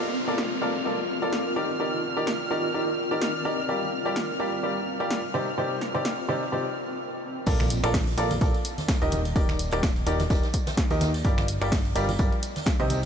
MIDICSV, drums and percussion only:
0, 0, Header, 1, 2, 480
1, 0, Start_track
1, 0, Key_signature, -2, "major"
1, 0, Tempo, 472441
1, 1827, Time_signature, 4, 2, 24, 8
1, 13264, End_track
2, 0, Start_track
2, 0, Title_t, "Drums"
2, 387, Note_on_c, 9, 38, 112
2, 488, Note_off_c, 9, 38, 0
2, 1347, Note_on_c, 9, 38, 113
2, 1448, Note_off_c, 9, 38, 0
2, 2307, Note_on_c, 9, 38, 114
2, 2408, Note_off_c, 9, 38, 0
2, 3267, Note_on_c, 9, 38, 117
2, 3368, Note_off_c, 9, 38, 0
2, 4227, Note_on_c, 9, 38, 116
2, 4328, Note_off_c, 9, 38, 0
2, 5187, Note_on_c, 9, 38, 115
2, 5288, Note_off_c, 9, 38, 0
2, 5907, Note_on_c, 9, 38, 58
2, 6009, Note_off_c, 9, 38, 0
2, 6147, Note_on_c, 9, 38, 110
2, 6249, Note_off_c, 9, 38, 0
2, 7583, Note_on_c, 9, 54, 93
2, 7587, Note_on_c, 9, 36, 119
2, 7587, Note_on_c, 9, 42, 55
2, 7587, Note_on_c, 9, 49, 104
2, 7591, Note_off_c, 9, 54, 0
2, 7591, Note_on_c, 9, 54, 68
2, 7689, Note_off_c, 9, 36, 0
2, 7689, Note_off_c, 9, 42, 0
2, 7689, Note_off_c, 9, 49, 0
2, 7693, Note_off_c, 9, 54, 0
2, 7721, Note_on_c, 9, 26, 78
2, 7721, Note_on_c, 9, 42, 28
2, 7724, Note_on_c, 9, 54, 38
2, 7724, Note_on_c, 9, 63, 87
2, 7725, Note_on_c, 9, 38, 50
2, 7823, Note_off_c, 9, 26, 0
2, 7823, Note_off_c, 9, 42, 0
2, 7825, Note_off_c, 9, 54, 0
2, 7826, Note_off_c, 9, 38, 0
2, 7826, Note_off_c, 9, 63, 0
2, 7827, Note_on_c, 9, 46, 110
2, 7835, Note_on_c, 9, 54, 68
2, 7928, Note_off_c, 9, 46, 0
2, 7937, Note_off_c, 9, 54, 0
2, 7962, Note_on_c, 9, 26, 78
2, 7962, Note_on_c, 9, 42, 55
2, 7962, Note_on_c, 9, 54, 80
2, 8063, Note_off_c, 9, 26, 0
2, 8063, Note_off_c, 9, 42, 0
2, 8064, Note_off_c, 9, 54, 0
2, 8067, Note_on_c, 9, 36, 120
2, 8067, Note_on_c, 9, 38, 122
2, 8067, Note_on_c, 9, 42, 53
2, 8069, Note_on_c, 9, 46, 87
2, 8070, Note_on_c, 9, 54, 70
2, 8070, Note_on_c, 9, 63, 66
2, 8073, Note_off_c, 9, 38, 0
2, 8073, Note_on_c, 9, 38, 111
2, 8169, Note_off_c, 9, 36, 0
2, 8169, Note_off_c, 9, 42, 0
2, 8171, Note_off_c, 9, 46, 0
2, 8171, Note_off_c, 9, 54, 0
2, 8172, Note_off_c, 9, 63, 0
2, 8174, Note_off_c, 9, 38, 0
2, 8202, Note_on_c, 9, 42, 27
2, 8209, Note_on_c, 9, 54, 40
2, 8303, Note_off_c, 9, 42, 0
2, 8307, Note_on_c, 9, 46, 106
2, 8310, Note_off_c, 9, 54, 0
2, 8310, Note_on_c, 9, 54, 67
2, 8409, Note_off_c, 9, 46, 0
2, 8412, Note_off_c, 9, 54, 0
2, 8440, Note_on_c, 9, 54, 84
2, 8442, Note_on_c, 9, 42, 55
2, 8446, Note_on_c, 9, 63, 92
2, 8542, Note_off_c, 9, 54, 0
2, 8543, Note_off_c, 9, 42, 0
2, 8547, Note_on_c, 9, 36, 122
2, 8547, Note_on_c, 9, 42, 53
2, 8548, Note_off_c, 9, 63, 0
2, 8550, Note_on_c, 9, 54, 68
2, 8552, Note_off_c, 9, 54, 0
2, 8552, Note_on_c, 9, 54, 84
2, 8649, Note_off_c, 9, 36, 0
2, 8649, Note_off_c, 9, 42, 0
2, 8653, Note_off_c, 9, 54, 0
2, 8678, Note_on_c, 9, 54, 44
2, 8682, Note_on_c, 9, 42, 28
2, 8780, Note_off_c, 9, 54, 0
2, 8783, Note_off_c, 9, 42, 0
2, 8786, Note_on_c, 9, 54, 66
2, 8787, Note_on_c, 9, 46, 107
2, 8888, Note_off_c, 9, 54, 0
2, 8889, Note_off_c, 9, 46, 0
2, 8921, Note_on_c, 9, 38, 47
2, 8921, Note_on_c, 9, 42, 54
2, 8922, Note_on_c, 9, 63, 69
2, 8925, Note_on_c, 9, 54, 74
2, 9022, Note_off_c, 9, 38, 0
2, 9023, Note_off_c, 9, 42, 0
2, 9023, Note_off_c, 9, 63, 0
2, 9027, Note_off_c, 9, 54, 0
2, 9027, Note_on_c, 9, 36, 123
2, 9027, Note_on_c, 9, 38, 125
2, 9027, Note_on_c, 9, 42, 57
2, 9027, Note_on_c, 9, 54, 88
2, 9028, Note_off_c, 9, 54, 0
2, 9028, Note_on_c, 9, 54, 61
2, 9031, Note_off_c, 9, 38, 0
2, 9031, Note_on_c, 9, 38, 121
2, 9128, Note_off_c, 9, 42, 0
2, 9129, Note_off_c, 9, 36, 0
2, 9130, Note_off_c, 9, 54, 0
2, 9133, Note_off_c, 9, 38, 0
2, 9162, Note_on_c, 9, 42, 28
2, 9166, Note_on_c, 9, 54, 41
2, 9263, Note_off_c, 9, 42, 0
2, 9264, Note_off_c, 9, 54, 0
2, 9264, Note_on_c, 9, 54, 69
2, 9267, Note_on_c, 9, 46, 106
2, 9272, Note_on_c, 9, 63, 101
2, 9366, Note_off_c, 9, 54, 0
2, 9368, Note_off_c, 9, 46, 0
2, 9374, Note_off_c, 9, 63, 0
2, 9400, Note_on_c, 9, 54, 78
2, 9402, Note_on_c, 9, 42, 53
2, 9501, Note_off_c, 9, 54, 0
2, 9504, Note_off_c, 9, 42, 0
2, 9507, Note_on_c, 9, 36, 124
2, 9507, Note_on_c, 9, 42, 54
2, 9507, Note_on_c, 9, 54, 73
2, 9508, Note_off_c, 9, 54, 0
2, 9508, Note_on_c, 9, 54, 99
2, 9609, Note_off_c, 9, 36, 0
2, 9609, Note_off_c, 9, 42, 0
2, 9610, Note_off_c, 9, 54, 0
2, 9638, Note_on_c, 9, 63, 90
2, 9640, Note_on_c, 9, 38, 57
2, 9641, Note_on_c, 9, 54, 41
2, 9642, Note_on_c, 9, 26, 79
2, 9642, Note_on_c, 9, 42, 26
2, 9740, Note_off_c, 9, 63, 0
2, 9742, Note_off_c, 9, 38, 0
2, 9743, Note_off_c, 9, 26, 0
2, 9743, Note_off_c, 9, 42, 0
2, 9743, Note_off_c, 9, 54, 0
2, 9747, Note_on_c, 9, 46, 109
2, 9752, Note_on_c, 9, 54, 67
2, 9848, Note_off_c, 9, 46, 0
2, 9854, Note_off_c, 9, 54, 0
2, 9869, Note_on_c, 9, 54, 78
2, 9882, Note_on_c, 9, 26, 78
2, 9882, Note_on_c, 9, 42, 54
2, 9971, Note_off_c, 9, 54, 0
2, 9983, Note_off_c, 9, 26, 0
2, 9983, Note_off_c, 9, 42, 0
2, 9987, Note_on_c, 9, 36, 124
2, 9987, Note_on_c, 9, 38, 124
2, 9987, Note_on_c, 9, 42, 54
2, 9987, Note_on_c, 9, 54, 63
2, 9988, Note_off_c, 9, 54, 0
2, 9988, Note_on_c, 9, 54, 91
2, 9989, Note_on_c, 9, 63, 68
2, 10089, Note_off_c, 9, 36, 0
2, 10089, Note_off_c, 9, 38, 0
2, 10089, Note_off_c, 9, 42, 0
2, 10089, Note_off_c, 9, 54, 0
2, 10091, Note_off_c, 9, 63, 0
2, 10120, Note_on_c, 9, 54, 39
2, 10122, Note_on_c, 9, 42, 27
2, 10221, Note_off_c, 9, 54, 0
2, 10223, Note_off_c, 9, 42, 0
2, 10227, Note_on_c, 9, 46, 110
2, 10230, Note_on_c, 9, 54, 62
2, 10328, Note_off_c, 9, 46, 0
2, 10332, Note_off_c, 9, 54, 0
2, 10355, Note_on_c, 9, 38, 50
2, 10360, Note_on_c, 9, 54, 89
2, 10361, Note_on_c, 9, 42, 56
2, 10368, Note_on_c, 9, 63, 99
2, 10457, Note_off_c, 9, 38, 0
2, 10462, Note_off_c, 9, 54, 0
2, 10463, Note_off_c, 9, 42, 0
2, 10464, Note_on_c, 9, 38, 93
2, 10467, Note_on_c, 9, 36, 124
2, 10467, Note_on_c, 9, 42, 54
2, 10469, Note_off_c, 9, 63, 0
2, 10470, Note_on_c, 9, 54, 83
2, 10474, Note_off_c, 9, 54, 0
2, 10474, Note_on_c, 9, 54, 66
2, 10566, Note_off_c, 9, 38, 0
2, 10568, Note_off_c, 9, 42, 0
2, 10569, Note_off_c, 9, 36, 0
2, 10575, Note_off_c, 9, 54, 0
2, 10601, Note_on_c, 9, 38, 45
2, 10601, Note_on_c, 9, 42, 27
2, 10601, Note_on_c, 9, 54, 45
2, 10701, Note_off_c, 9, 54, 0
2, 10701, Note_on_c, 9, 54, 62
2, 10703, Note_off_c, 9, 38, 0
2, 10703, Note_off_c, 9, 42, 0
2, 10707, Note_on_c, 9, 36, 65
2, 10707, Note_on_c, 9, 46, 110
2, 10803, Note_off_c, 9, 54, 0
2, 10808, Note_off_c, 9, 46, 0
2, 10809, Note_off_c, 9, 36, 0
2, 10839, Note_on_c, 9, 63, 75
2, 10840, Note_on_c, 9, 54, 77
2, 10841, Note_off_c, 9, 54, 0
2, 10841, Note_on_c, 9, 38, 106
2, 10841, Note_on_c, 9, 54, 79
2, 10842, Note_on_c, 9, 42, 54
2, 10941, Note_off_c, 9, 63, 0
2, 10943, Note_off_c, 9, 38, 0
2, 10943, Note_off_c, 9, 42, 0
2, 10943, Note_off_c, 9, 54, 0
2, 10947, Note_on_c, 9, 36, 126
2, 10947, Note_on_c, 9, 38, 127
2, 10947, Note_on_c, 9, 42, 54
2, 10950, Note_off_c, 9, 38, 0
2, 10950, Note_on_c, 9, 38, 46
2, 10951, Note_on_c, 9, 54, 62
2, 11048, Note_off_c, 9, 42, 0
2, 11049, Note_off_c, 9, 36, 0
2, 11051, Note_off_c, 9, 38, 0
2, 11052, Note_off_c, 9, 54, 0
2, 11078, Note_on_c, 9, 54, 59
2, 11081, Note_off_c, 9, 54, 0
2, 11081, Note_on_c, 9, 42, 27
2, 11081, Note_on_c, 9, 54, 38
2, 11183, Note_off_c, 9, 42, 0
2, 11183, Note_off_c, 9, 54, 0
2, 11184, Note_on_c, 9, 54, 79
2, 11187, Note_on_c, 9, 46, 109
2, 11187, Note_on_c, 9, 63, 103
2, 11189, Note_on_c, 9, 38, 108
2, 11286, Note_off_c, 9, 54, 0
2, 11288, Note_off_c, 9, 46, 0
2, 11289, Note_off_c, 9, 63, 0
2, 11290, Note_off_c, 9, 38, 0
2, 11321, Note_on_c, 9, 42, 53
2, 11321, Note_on_c, 9, 54, 79
2, 11324, Note_on_c, 9, 38, 42
2, 11423, Note_off_c, 9, 42, 0
2, 11423, Note_off_c, 9, 54, 0
2, 11423, Note_on_c, 9, 54, 73
2, 11425, Note_off_c, 9, 38, 0
2, 11425, Note_off_c, 9, 54, 0
2, 11425, Note_on_c, 9, 54, 97
2, 11427, Note_on_c, 9, 36, 125
2, 11427, Note_on_c, 9, 42, 52
2, 11526, Note_off_c, 9, 54, 0
2, 11529, Note_off_c, 9, 36, 0
2, 11529, Note_off_c, 9, 42, 0
2, 11557, Note_on_c, 9, 38, 46
2, 11561, Note_on_c, 9, 26, 79
2, 11561, Note_on_c, 9, 42, 25
2, 11561, Note_on_c, 9, 63, 104
2, 11563, Note_on_c, 9, 54, 43
2, 11658, Note_off_c, 9, 38, 0
2, 11663, Note_off_c, 9, 26, 0
2, 11663, Note_off_c, 9, 42, 0
2, 11663, Note_off_c, 9, 63, 0
2, 11665, Note_off_c, 9, 54, 0
2, 11666, Note_on_c, 9, 54, 70
2, 11667, Note_on_c, 9, 46, 115
2, 11768, Note_off_c, 9, 46, 0
2, 11768, Note_off_c, 9, 54, 0
2, 11799, Note_on_c, 9, 54, 83
2, 11802, Note_on_c, 9, 26, 76
2, 11802, Note_on_c, 9, 42, 50
2, 11901, Note_off_c, 9, 54, 0
2, 11903, Note_off_c, 9, 26, 0
2, 11903, Note_off_c, 9, 42, 0
2, 11907, Note_on_c, 9, 36, 127
2, 11907, Note_on_c, 9, 38, 124
2, 11907, Note_on_c, 9, 42, 51
2, 11908, Note_on_c, 9, 63, 67
2, 11910, Note_off_c, 9, 38, 0
2, 11910, Note_on_c, 9, 38, 108
2, 11910, Note_on_c, 9, 54, 68
2, 11915, Note_on_c, 9, 46, 79
2, 12009, Note_off_c, 9, 36, 0
2, 12009, Note_off_c, 9, 42, 0
2, 12009, Note_off_c, 9, 63, 0
2, 12011, Note_off_c, 9, 54, 0
2, 12012, Note_off_c, 9, 38, 0
2, 12016, Note_off_c, 9, 46, 0
2, 12042, Note_on_c, 9, 42, 26
2, 12048, Note_on_c, 9, 54, 40
2, 12143, Note_off_c, 9, 42, 0
2, 12147, Note_on_c, 9, 46, 111
2, 12150, Note_off_c, 9, 54, 0
2, 12154, Note_on_c, 9, 54, 73
2, 12248, Note_off_c, 9, 46, 0
2, 12255, Note_off_c, 9, 54, 0
2, 12282, Note_on_c, 9, 42, 52
2, 12282, Note_on_c, 9, 63, 93
2, 12287, Note_on_c, 9, 54, 82
2, 12382, Note_off_c, 9, 54, 0
2, 12382, Note_on_c, 9, 54, 94
2, 12383, Note_off_c, 9, 42, 0
2, 12383, Note_off_c, 9, 63, 0
2, 12387, Note_on_c, 9, 36, 124
2, 12387, Note_on_c, 9, 42, 52
2, 12484, Note_off_c, 9, 54, 0
2, 12489, Note_off_c, 9, 36, 0
2, 12489, Note_off_c, 9, 42, 0
2, 12520, Note_on_c, 9, 54, 39
2, 12522, Note_on_c, 9, 42, 26
2, 12621, Note_off_c, 9, 54, 0
2, 12623, Note_off_c, 9, 42, 0
2, 12627, Note_on_c, 9, 46, 115
2, 12632, Note_on_c, 9, 54, 62
2, 12729, Note_off_c, 9, 46, 0
2, 12733, Note_off_c, 9, 54, 0
2, 12760, Note_on_c, 9, 38, 50
2, 12761, Note_on_c, 9, 42, 52
2, 12767, Note_on_c, 9, 63, 63
2, 12770, Note_on_c, 9, 54, 83
2, 12860, Note_off_c, 9, 38, 0
2, 12860, Note_on_c, 9, 38, 113
2, 12861, Note_off_c, 9, 54, 0
2, 12861, Note_on_c, 9, 54, 93
2, 12863, Note_off_c, 9, 42, 0
2, 12865, Note_off_c, 9, 54, 0
2, 12865, Note_on_c, 9, 54, 70
2, 12867, Note_off_c, 9, 38, 0
2, 12867, Note_on_c, 9, 36, 127
2, 12867, Note_on_c, 9, 38, 125
2, 12867, Note_on_c, 9, 42, 52
2, 12868, Note_off_c, 9, 63, 0
2, 12967, Note_off_c, 9, 54, 0
2, 12969, Note_off_c, 9, 36, 0
2, 12969, Note_off_c, 9, 38, 0
2, 12969, Note_off_c, 9, 42, 0
2, 13001, Note_on_c, 9, 42, 27
2, 13004, Note_on_c, 9, 54, 44
2, 13103, Note_off_c, 9, 42, 0
2, 13105, Note_off_c, 9, 54, 0
2, 13107, Note_on_c, 9, 46, 111
2, 13107, Note_on_c, 9, 63, 92
2, 13110, Note_on_c, 9, 54, 65
2, 13209, Note_off_c, 9, 46, 0
2, 13209, Note_off_c, 9, 63, 0
2, 13212, Note_off_c, 9, 54, 0
2, 13264, End_track
0, 0, End_of_file